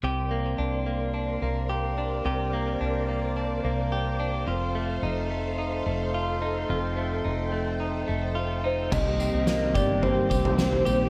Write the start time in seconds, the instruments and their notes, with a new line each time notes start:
0.02 fretless electric bass C2, clean electric guitar C3 G4, string machine A#4 C5 D5 C6
0.31 clean electric guitar A#3
0.58 fretless electric bass C2, clean electric guitar D4
0.86 clean electric guitar A#3
1.14 clean electric guitar D4
1.42 fretless electric bass C2, clean electric guitar A#3
1.70 clean electric guitar G4
1.98 clean electric guitar D4
2.24 fretless electric bass C2, clean electric guitar C3 G4, string machine D6
2.53 clean electric guitar A#3
2.81 fretless electric bass C2, clean electric guitar D4
3.08 clean electric guitar A#3
3.37 clean electric guitar D4
3.64 fretless electric bass C2, clean electric guitar A#3
3.92 clean electric guitar G4
4.20 clean electric guitar D4
4.46 fretless electric bass F1, clean electric guitar F2 F4, string machine A4 F5 C6
4.75 clean electric guitar A3
5.02 fretless electric bass F1, clean electric guitar D#4
5.30 clean electric guitar A3
5.58 clean electric guitar D#4
5.86 fretless electric bass F1, clean electric guitar A3
6.14 clean electric guitar F4
6.42 clean electric guitar D#4
6.69 fretless electric bass F1, clean electric guitar F2 F4, string machine G5
6.97 clean electric guitar A3
7.24 fretless electric bass F1, clean electric guitar D#4
7.52 clean electric guitar A3
7.80 clean electric guitar D#4
8.08 fretless electric bass F1, clean electric guitar A3
8.35 clean electric guitar F4
8.64 clean electric guitar D#4, soft synth lead C5
8.90 fretless electric bass C2, clean electric guitar C3, string machine D#3 G3 A#3 C4 G4, soft synth lead D#5, kick, floor tom, crash, tambourine
9.20 clean electric guitar C4, tambourine
9.33 fretless electric bass C2
9.47 clean electric guitar A#3, snare, tambourine
9.75 fretless electric bass G1, clean electric guitar G4, soft synth lead D5, kick, tambourine
10.02 clean electric guitar C4, soft synth lead C5, floor tom
10.30 fretless electric bass C2, clean electric guitar G4, kick, tambourine
10.45 floor tom
10.58 clean electric guitar C4, snare, tambourine
10.73 floor tom
10.85 fretless electric bass A#1, clean electric guitar G4, tambourine